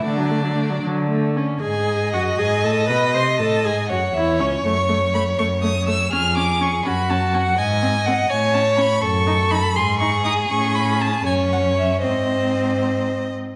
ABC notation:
X:1
M:6/8
L:1/16
Q:3/8=80
K:D
V:1 name="Violin"
d6 z6 | [K:F#dor] g4 f2 g2 a2 b2 | ^b2 a2 g2 f2 e2 c2 | c'4 b2 c'2 d'2 e'2 |
^e'2 =d'2 c'2 b2 a2 f2 | g4 f2 g2 a2 b2 | c'4 b2 ^b2 c'2 d'2 | c'2 b2 a2 g2 f2 e2 |
d8- d2 z2 |]
V:2 name="Violin"
D6 z6 | [K:F#dor] d12- | d6 c6- | c12 |
G6 F6 | d6 c6 | A6 G6- | G6 c6 |
^B8- B z3 |]
V:3 name="Viola"
A, F, A, F, A, F, F,2 A,2 C2 | [K:F#dor] G4 F2 G2 A2 B2 | ^B2 A2 G2 F2 E2 C2 | A,2 A,2 A,2 A,2 A,2 A,2 |
C2 C2 C2 C2 C2 C2 | z2 ^B,2 B,2 z2 C2 C2 | z2 D2 D2 z2 D2 D2 | C6 C6 |
^B,8- B,2 z2 |]
V:4 name="Cello" clef=bass
D,6 D,6 | [K:F#dor] G,,4 F,,2 G,,2 A,,2 B,,2 | ^B,,2 A,,2 G,,2 F,,2 E,,2 C,,2 | F,,6 F,,6 |
^E,,6 F,,6 | G,,6 A,,6 | F,,6 G,,6 | A,,6 F,,6 |
G,,8- G,,2 z2 |]